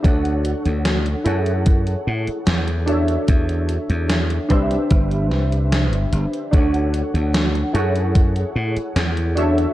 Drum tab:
HH |xxxxxxxxxx-xxxxx|xxxxxxxxxx-xxxxx|xxxxxxxxxx-xxxxx|
SD |----o-------o---|----o-----o-o---|----o-------o---|
BD |o-------o-------|o-----o-o-------|o-------o-------|